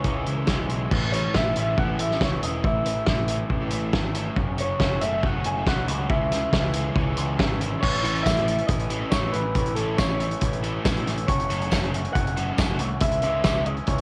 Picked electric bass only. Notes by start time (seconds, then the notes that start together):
0.05 C#2
0.27 C#2
0.48 C#2
0.69 B1
0.91 A1
1.35 A1
1.57 A1
1.78 A1
2.00 A1
2.21 C#2
2.43 E1
2.65 A1
3.07 A1
3.50 A1
3.71 A1
3.93 G#1
4.37 F#1
4.80 F#1
5.01 F#1
5.23 F#1
5.45 F#1
5.67 B1
5.87 C#2
6.10 C#2
6.53 C#2
6.96 C#2
7.18 C#2
7.39 G#1
7.83 A1
8.05 A1
8.26 A1
8.69 A1
9.12 A1
9.35 A1
9.55 A1
9.77 A1
9.98 A1
10.42 A1
10.86 A1
11.07 A1
11.29 F#1
11.50 F#1
11.72 F#1
12.15 F#1
12.59 F#1
12.80 C2
13.01 C#2
13.23 C#2
13.45 C#2
13.88 C#2